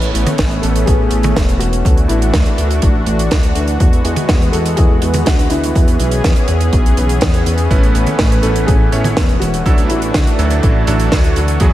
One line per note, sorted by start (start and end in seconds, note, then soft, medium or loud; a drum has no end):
0.00 0.12 A1 medium
0.00 1.83 E3 medium
0.00 1.83 A3 medium
0.00 1.83 B3 medium
0.00 1.83 C#4 medium
0.00 closed hi-hat soft
0.14 0.25 A1 loud
0.14 closed hi-hat medium
0.26 closed hi-hat medium
0.26 high tom medium
0.38 0.61 A1 medium
0.38 kick loud
0.38 snare loud
0.38 closed hi-hat medium
0.51 closed hi-hat medium
0.62 0.85 A1 medium
0.62 0.88 A4 loud
0.62 closed hi-hat medium
0.76 closed hi-hat medium
0.86 1.09 A1 loud
0.86 1.56 G#4 loud
0.86 kick loud
0.86 closed hi-hat medium
1.11 1.34 A1 medium
1.11 closed hi-hat medium
1.23 closed hi-hat medium
1.23 high tom medium
1.36 1.58 E1 medium
1.36 kick loud
1.36 snare loud
1.36 closed hi-hat medium
1.49 closed hi-hat medium
1.59 1.83 E1 medium
1.59 2.10 F#4 loud
1.59 closed hi-hat medium
1.73 closed hi-hat medium
1.85 2.07 D2 medium
1.85 11.73 E3 medium
1.85 3.78 A3 medium
1.85 3.78 D4 medium
1.85 5.71 F#4 medium
1.85 kick loud
1.85 closed hi-hat medium
1.97 closed hi-hat soft
2.08 2.31 A1 medium
2.08 3.02 E4 loud
2.08 closed hi-hat medium
2.22 closed hi-hat medium
2.34 2.45 D2 medium
2.34 kick loud
2.34 snare loud
2.34 closed hi-hat medium
2.46 closed hi-hat medium
2.58 2.80 D2 loud
2.58 closed hi-hat medium
2.71 closed hi-hat medium
2.82 3.05 A1 medium
2.82 kick loud
2.82 closed hi-hat medium
3.06 3.29 A1 loud
3.06 closed hi-hat medium
3.19 closed hi-hat medium
3.31 3.53 D2 loud
3.31 kick loud
3.31 snare loud
3.31 closed hi-hat medium
3.43 closed hi-hat medium
3.55 3.78 D2 medium
3.55 closed hi-hat medium
3.68 closed hi-hat medium
3.80 4.02 E2 medium
3.80 5.73 G#3 medium
3.80 9.62 B3 medium
3.80 kick loud
3.80 closed hi-hat medium
3.93 closed hi-hat soft
4.05 4.16 E2 loud
4.05 closed hi-hat medium
4.16 closed hi-hat medium
4.16 high tom medium
4.29 4.51 E2 medium
4.29 kick loud
4.29 snare loud
4.29 closed hi-hat medium
4.42 closed hi-hat medium
4.52 4.75 E2 medium
4.52 4.78 A4 loud
4.52 closed hi-hat medium
4.66 closed hi-hat medium
4.76 5.00 E2 loud
4.76 5.27 G#4 loud
4.76 kick loud
4.76 closed hi-hat medium
5.02 5.24 E2 medium
5.02 closed hi-hat medium
5.14 closed hi-hat medium
5.14 high tom medium
5.25 5.48 D2 medium
5.25 5.51 F#4 medium
5.25 kick loud
5.25 snare loud
5.25 closed hi-hat medium
5.39 closed hi-hat medium
5.50 5.73 D2 medium
5.50 6.93 E4 medium
5.50 closed hi-hat medium
5.64 closed hi-hat medium
5.75 5.97 E2 medium
5.75 9.62 C#4 medium
5.75 7.69 G#4 medium
5.75 kick loud
5.75 closed hi-hat medium
5.88 closed hi-hat soft
6.00 6.22 B1 medium
6.00 closed hi-hat medium
6.11 closed hi-hat medium
6.24 6.35 E2 medium
6.24 kick loud
6.24 snare loud
6.24 closed hi-hat medium
6.36 closed hi-hat medium
6.48 6.70 E2 loud
6.48 closed hi-hat medium
6.61 closed hi-hat medium
6.73 6.95 B1 medium
6.73 kick loud
6.73 closed hi-hat medium
6.86 closed hi-hat medium
6.97 7.19 B1 medium
6.97 closed hi-hat medium
7.09 closed hi-hat medium
7.21 7.44 E2 medium
7.21 kick loud
7.21 snare loud
7.21 closed hi-hat medium
7.34 closed hi-hat medium
7.46 7.68 E2 medium
7.46 closed hi-hat medium
7.58 closed hi-hat medium
7.71 7.92 A1 medium
7.71 9.64 A3 medium
7.71 8.41 A3 medium
7.71 8.41 C#4 medium
7.71 8.41 E4 medium
7.71 8.41 B4 medium
7.71 kick loud
7.71 closed hi-hat medium
7.83 closed hi-hat soft
7.95 8.06 A1 loud
7.95 closed hi-hat medium
8.07 closed hi-hat medium
8.07 high tom medium
8.19 8.41 A1 medium
8.19 kick loud
8.19 snare loud
8.19 closed hi-hat medium
8.32 closed hi-hat medium
8.42 8.66 A1 medium
8.42 8.90 A3 medium
8.42 8.90 C#4 medium
8.42 8.90 E4 medium
8.42 8.68 A4 loud
8.42 8.90 B4 medium
8.42 closed hi-hat medium
8.56 closed hi-hat medium
8.66 8.90 A1 loud
8.66 9.43 G#4 loud
8.66 kick loud
8.66 closed hi-hat medium
8.92 9.14 A1 medium
8.92 9.15 A3 medium
8.92 9.15 C#4 medium
8.92 9.15 E4 medium
8.92 9.15 C#5 medium
8.92 closed hi-hat medium
9.04 closed hi-hat medium
9.04 high tom medium
9.17 9.39 E1 medium
9.17 kick loud
9.17 snare loud
9.17 closed hi-hat medium
9.29 closed hi-hat soft
9.40 9.63 E1 medium
9.40 9.91 F#4 loud
9.40 closed hi-hat medium
9.54 closed hi-hat medium
9.65 9.88 D2 medium
9.65 9.88 F#3 medium
9.65 11.59 A3 medium
9.65 11.59 D4 medium
9.65 9.88 D4 medium
9.65 9.88 E4 medium
9.65 11.73 F#4 medium
9.65 9.88 A4 loud
9.65 kick loud
9.65 closed hi-hat medium
9.78 closed hi-hat medium
9.88 10.12 A1 medium
9.88 10.83 E4 medium
9.88 closed hi-hat medium
10.02 closed hi-hat medium
10.14 10.25 D2 medium
10.14 kick loud
10.14 snare loud
10.14 closed hi-hat medium
10.27 closed hi-hat medium
10.39 10.61 D2 loud
10.39 10.85 F#3 medium
10.39 10.85 D4 medium
10.39 10.85 E4 medium
10.39 10.85 A4 medium
10.39 closed hi-hat medium
10.50 closed hi-hat medium
10.63 10.85 A1 medium
10.63 kick loud
10.63 closed hi-hat medium
10.87 11.10 A1 loud
10.87 11.58 F#3 medium
10.87 11.58 D4 medium
10.87 11.58 E4 medium
10.87 11.58 A4 loud
10.87 closed hi-hat medium
11.00 closed hi-hat medium
11.12 11.34 D2 medium
11.12 kick loud
11.12 snare loud
11.12 closed hi-hat medium
11.24 closed hi-hat medium
11.36 11.58 D2 medium
11.36 closed hi-hat medium
11.48 closed hi-hat medium
11.60 11.73 E2 loud
11.60 11.73 F#3 medium
11.60 11.73 G#3 medium
11.60 11.73 B3 medium
11.60 11.73 E4 medium
11.60 11.73 G#4 loud
11.60 kick loud
11.60 closed hi-hat medium